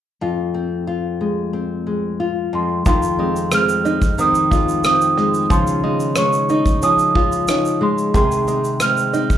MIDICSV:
0, 0, Header, 1, 5, 480
1, 0, Start_track
1, 0, Key_signature, -4, "minor"
1, 0, Tempo, 660793
1, 153, Time_signature, 4, 2, 24, 8
1, 6812, End_track
2, 0, Start_track
2, 0, Title_t, "Celesta"
2, 0, Program_c, 0, 8
2, 1853, Note_on_c, 0, 84, 71
2, 2087, Note_off_c, 0, 84, 0
2, 2096, Note_on_c, 0, 84, 89
2, 2575, Note_on_c, 0, 89, 104
2, 2580, Note_off_c, 0, 84, 0
2, 3054, Note_on_c, 0, 87, 94
2, 3059, Note_off_c, 0, 89, 0
2, 3521, Note_off_c, 0, 87, 0
2, 3530, Note_on_c, 0, 87, 100
2, 4006, Note_on_c, 0, 84, 89
2, 4017, Note_off_c, 0, 87, 0
2, 4489, Note_on_c, 0, 85, 86
2, 4495, Note_off_c, 0, 84, 0
2, 4966, Note_on_c, 0, 87, 89
2, 4976, Note_off_c, 0, 85, 0
2, 5686, Note_on_c, 0, 84, 80
2, 5701, Note_off_c, 0, 87, 0
2, 5921, Note_off_c, 0, 84, 0
2, 5930, Note_on_c, 0, 84, 87
2, 6408, Note_on_c, 0, 89, 98
2, 6416, Note_off_c, 0, 84, 0
2, 6812, Note_off_c, 0, 89, 0
2, 6812, End_track
3, 0, Start_track
3, 0, Title_t, "Nylon-string guitar"
3, 0, Program_c, 1, 24
3, 155, Note_on_c, 1, 41, 64
3, 160, Note_on_c, 1, 65, 49
3, 395, Note_on_c, 1, 60, 46
3, 632, Note_off_c, 1, 65, 0
3, 634, Note_on_c, 1, 65, 55
3, 877, Note_on_c, 1, 56, 48
3, 1110, Note_off_c, 1, 60, 0
3, 1113, Note_on_c, 1, 60, 48
3, 1353, Note_off_c, 1, 56, 0
3, 1356, Note_on_c, 1, 56, 50
3, 1594, Note_off_c, 1, 65, 0
3, 1597, Note_on_c, 1, 65, 55
3, 1828, Note_off_c, 1, 41, 0
3, 1837, Note_on_c, 1, 41, 65
3, 2068, Note_off_c, 1, 41, 0
3, 2077, Note_off_c, 1, 65, 0
3, 2077, Note_on_c, 1, 41, 82
3, 2080, Note_on_c, 1, 65, 67
3, 2311, Note_off_c, 1, 60, 0
3, 2314, Note_on_c, 1, 60, 61
3, 2555, Note_off_c, 1, 56, 0
3, 2558, Note_on_c, 1, 56, 60
3, 2791, Note_off_c, 1, 60, 0
3, 2800, Note_on_c, 1, 60, 57
3, 3038, Note_on_c, 1, 51, 70
3, 3276, Note_off_c, 1, 65, 0
3, 3279, Note_on_c, 1, 65, 66
3, 3509, Note_off_c, 1, 60, 0
3, 3518, Note_on_c, 1, 60, 60
3, 3758, Note_off_c, 1, 56, 0
3, 3760, Note_on_c, 1, 56, 62
3, 3996, Note_off_c, 1, 41, 0
3, 3998, Note_on_c, 1, 49, 83
3, 4000, Note_off_c, 1, 65, 0
3, 4003, Note_on_c, 1, 65, 69
3, 4045, Note_off_c, 1, 60, 0
3, 4240, Note_on_c, 1, 63, 60
3, 4479, Note_off_c, 1, 56, 0
3, 4482, Note_on_c, 1, 56, 61
3, 4716, Note_off_c, 1, 63, 0
3, 4719, Note_on_c, 1, 63, 60
3, 4954, Note_off_c, 1, 51, 0
3, 4957, Note_on_c, 1, 53, 66
3, 5188, Note_off_c, 1, 65, 0
3, 5197, Note_on_c, 1, 65, 69
3, 5431, Note_off_c, 1, 63, 0
3, 5434, Note_on_c, 1, 63, 62
3, 5668, Note_off_c, 1, 56, 0
3, 5671, Note_on_c, 1, 56, 60
3, 5911, Note_off_c, 1, 49, 0
3, 5914, Note_off_c, 1, 65, 0
3, 5914, Note_on_c, 1, 48, 81
3, 5917, Note_on_c, 1, 68, 66
3, 5963, Note_off_c, 1, 53, 0
3, 6151, Note_off_c, 1, 63, 0
3, 6154, Note_on_c, 1, 60, 64
3, 6397, Note_off_c, 1, 56, 0
3, 6400, Note_on_c, 1, 56, 63
3, 6632, Note_off_c, 1, 60, 0
3, 6641, Note_on_c, 1, 60, 59
3, 6812, Note_off_c, 1, 48, 0
3, 6812, Note_off_c, 1, 56, 0
3, 6812, Note_off_c, 1, 60, 0
3, 6812, Note_off_c, 1, 68, 0
3, 6812, End_track
4, 0, Start_track
4, 0, Title_t, "Five-string banjo"
4, 0, Program_c, 2, 105
4, 2079, Note_on_c, 2, 51, 78
4, 2319, Note_on_c, 2, 56, 58
4, 2557, Note_on_c, 2, 60, 59
4, 2797, Note_on_c, 2, 63, 62
4, 3034, Note_off_c, 2, 60, 0
4, 3042, Note_on_c, 2, 60, 58
4, 3273, Note_off_c, 2, 56, 0
4, 3276, Note_on_c, 2, 56, 57
4, 3508, Note_off_c, 2, 60, 0
4, 3517, Note_on_c, 2, 60, 56
4, 3755, Note_off_c, 2, 56, 0
4, 3758, Note_on_c, 2, 56, 59
4, 3993, Note_off_c, 2, 51, 0
4, 3996, Note_on_c, 2, 53, 79
4, 4044, Note_off_c, 2, 60, 0
4, 4044, Note_off_c, 2, 63, 0
4, 4236, Note_off_c, 2, 56, 0
4, 4238, Note_on_c, 2, 56, 60
4, 4475, Note_on_c, 2, 61, 59
4, 4719, Note_on_c, 2, 63, 66
4, 4949, Note_off_c, 2, 61, 0
4, 4958, Note_on_c, 2, 61, 61
4, 5193, Note_off_c, 2, 56, 0
4, 5196, Note_on_c, 2, 56, 58
4, 5432, Note_off_c, 2, 61, 0
4, 5440, Note_on_c, 2, 61, 58
4, 5677, Note_off_c, 2, 56, 0
4, 5680, Note_on_c, 2, 56, 54
4, 5912, Note_off_c, 2, 53, 0
4, 5915, Note_on_c, 2, 51, 83
4, 5964, Note_off_c, 2, 63, 0
4, 5965, Note_off_c, 2, 61, 0
4, 6155, Note_off_c, 2, 56, 0
4, 6158, Note_on_c, 2, 56, 56
4, 6397, Note_on_c, 2, 60, 63
4, 6635, Note_on_c, 2, 63, 66
4, 6812, Note_off_c, 2, 51, 0
4, 6812, Note_off_c, 2, 56, 0
4, 6812, Note_off_c, 2, 60, 0
4, 6812, Note_off_c, 2, 63, 0
4, 6812, End_track
5, 0, Start_track
5, 0, Title_t, "Drums"
5, 2076, Note_on_c, 9, 82, 60
5, 2077, Note_on_c, 9, 36, 100
5, 2149, Note_off_c, 9, 82, 0
5, 2150, Note_off_c, 9, 36, 0
5, 2197, Note_on_c, 9, 82, 50
5, 2270, Note_off_c, 9, 82, 0
5, 2442, Note_on_c, 9, 82, 46
5, 2515, Note_off_c, 9, 82, 0
5, 2554, Note_on_c, 9, 37, 109
5, 2555, Note_on_c, 9, 82, 79
5, 2626, Note_off_c, 9, 37, 0
5, 2628, Note_off_c, 9, 82, 0
5, 2679, Note_on_c, 9, 82, 54
5, 2752, Note_off_c, 9, 82, 0
5, 2800, Note_on_c, 9, 82, 50
5, 2872, Note_off_c, 9, 82, 0
5, 2918, Note_on_c, 9, 36, 91
5, 2919, Note_on_c, 9, 82, 49
5, 2990, Note_off_c, 9, 36, 0
5, 2992, Note_off_c, 9, 82, 0
5, 3039, Note_on_c, 9, 82, 75
5, 3112, Note_off_c, 9, 82, 0
5, 3158, Note_on_c, 9, 82, 50
5, 3231, Note_off_c, 9, 82, 0
5, 3280, Note_on_c, 9, 36, 88
5, 3285, Note_on_c, 9, 82, 50
5, 3352, Note_off_c, 9, 36, 0
5, 3358, Note_off_c, 9, 82, 0
5, 3403, Note_on_c, 9, 82, 53
5, 3476, Note_off_c, 9, 82, 0
5, 3514, Note_on_c, 9, 82, 67
5, 3520, Note_on_c, 9, 37, 107
5, 3587, Note_off_c, 9, 82, 0
5, 3593, Note_off_c, 9, 37, 0
5, 3641, Note_on_c, 9, 82, 50
5, 3714, Note_off_c, 9, 82, 0
5, 3759, Note_on_c, 9, 37, 34
5, 3832, Note_off_c, 9, 37, 0
5, 3879, Note_on_c, 9, 82, 46
5, 3951, Note_off_c, 9, 82, 0
5, 3998, Note_on_c, 9, 36, 101
5, 3999, Note_on_c, 9, 82, 57
5, 4070, Note_off_c, 9, 36, 0
5, 4072, Note_off_c, 9, 82, 0
5, 4119, Note_on_c, 9, 82, 55
5, 4192, Note_off_c, 9, 82, 0
5, 4358, Note_on_c, 9, 82, 48
5, 4431, Note_off_c, 9, 82, 0
5, 4472, Note_on_c, 9, 37, 112
5, 4473, Note_on_c, 9, 82, 78
5, 4544, Note_off_c, 9, 37, 0
5, 4546, Note_off_c, 9, 82, 0
5, 4596, Note_on_c, 9, 82, 53
5, 4669, Note_off_c, 9, 82, 0
5, 4715, Note_on_c, 9, 82, 52
5, 4788, Note_off_c, 9, 82, 0
5, 4835, Note_on_c, 9, 36, 88
5, 4836, Note_on_c, 9, 82, 47
5, 4908, Note_off_c, 9, 36, 0
5, 4908, Note_off_c, 9, 82, 0
5, 4956, Note_on_c, 9, 82, 79
5, 5029, Note_off_c, 9, 82, 0
5, 5075, Note_on_c, 9, 82, 54
5, 5147, Note_off_c, 9, 82, 0
5, 5197, Note_on_c, 9, 36, 90
5, 5270, Note_off_c, 9, 36, 0
5, 5318, Note_on_c, 9, 82, 52
5, 5391, Note_off_c, 9, 82, 0
5, 5432, Note_on_c, 9, 82, 71
5, 5438, Note_on_c, 9, 37, 110
5, 5505, Note_off_c, 9, 82, 0
5, 5511, Note_off_c, 9, 37, 0
5, 5559, Note_on_c, 9, 82, 55
5, 5631, Note_off_c, 9, 82, 0
5, 5798, Note_on_c, 9, 82, 48
5, 5870, Note_off_c, 9, 82, 0
5, 5916, Note_on_c, 9, 36, 107
5, 5917, Note_on_c, 9, 82, 59
5, 5988, Note_off_c, 9, 36, 0
5, 5990, Note_off_c, 9, 82, 0
5, 6040, Note_on_c, 9, 82, 52
5, 6113, Note_off_c, 9, 82, 0
5, 6158, Note_on_c, 9, 82, 50
5, 6231, Note_off_c, 9, 82, 0
5, 6278, Note_on_c, 9, 82, 48
5, 6351, Note_off_c, 9, 82, 0
5, 6393, Note_on_c, 9, 37, 108
5, 6394, Note_on_c, 9, 82, 80
5, 6465, Note_off_c, 9, 37, 0
5, 6467, Note_off_c, 9, 82, 0
5, 6517, Note_on_c, 9, 82, 53
5, 6589, Note_off_c, 9, 82, 0
5, 6637, Note_on_c, 9, 82, 50
5, 6710, Note_off_c, 9, 82, 0
5, 6756, Note_on_c, 9, 36, 89
5, 6758, Note_on_c, 9, 82, 51
5, 6812, Note_off_c, 9, 36, 0
5, 6812, Note_off_c, 9, 82, 0
5, 6812, End_track
0, 0, End_of_file